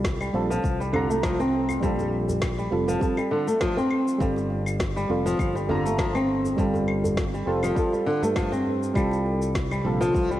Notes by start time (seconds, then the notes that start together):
Already playing: C2 G3 C4 F4 A4
0.04 kick, snare, shaker
0.21 G3, claves, shaker
0.33 A#1 G3 C4 F4 A4, djembe slap
0.50 F3, shaker
0.64 C2, kick, shaker
0.80 G3, djembe slap, shaker
0.92 D3 G3 C4 F4 A#5, djembe bass, claves
1.09 A3, shaker
1.23 F3, kick, snare, shaker
1.39 C4, djembe slap, shaker
1.69 djembe tone, claves, shaker
1.80 A#1 G3 C4 F4, kick, shaker
1.85 A4
1.99 djembe slap, djembe bass, shaker
2.29 djembe bass, shaker
2.42 kick, snare, claves, shaker
2.58 G3, shaker
2.71 F1 G3 C4 F4 A4
2.88 F3, djembe tone, shaker
2.99 G3 C4 F4 A4, kick, shaker
3.17 G3, claves, shaker
3.31 D3
3.47 A3, shaker
3.61 F3, kick, snare, shaker
3.76 C4, djembe tone, shaker
3.91 djembe tone, claves
4.08 shaker
4.18 G1 G3 C4 F4 A4, kick, shaker
4.36 djembe slap, shaker
4.50 djembe slap
4.66 claves, shaker
4.80 kick, snare, shaker
4.96 G3, shaker
5.09 F1 G3 C4 F4 A4, djembe slap
5.26 F3, shaker
5.39 G1, kick, claves, shaker
5.55 G3, djembe slap, shaker
5.67 D3 G3 C4 F4 A#5, djembe bass
5.85 A3, shaker
5.99 F3, kick, snare, shaker
6.15 C4, djembe slap, claves, shaker
6.44 djembe tone, shaker
6.56 G1 G3 C4 F4 A4, kick, shaker
6.74 djembe slap, djembe bass, shaker
6.88 claves
7.04 djembe tone, djembe bass, shaker
7.17 kick, snare, shaker
7.34 G3, shaker
7.46 F1 G3 C4 F4 A4
7.63 F3, djembe tone, claves, shaker
7.74 G3 C4 F4, kick, shaker
7.79 A4
7.93 G3, djembe tone, shaker
8.06 D3
8.22 G2 A3, shaker
8.36 F3, kick, snare, claves, shaker
8.52 C4, djembe tone, shaker
8.66 djembe tone
8.83 shaker
8.94 C2 C3 G3 C4 F4, kick, claves, shaker
8.98 A4
9.12 djembe slap, shaker
9.26 djembe slap
9.42 shaker
9.55 F4, kick, snare, shaker
9.71 G3, claves, shaker
9.84 A#1 G3 C4 F4 A4, djembe slap
9.94 C5
10.01 F3 D4, shaker
10.14 C2, kick, shaker
10.31 G3, djembe slap, shaker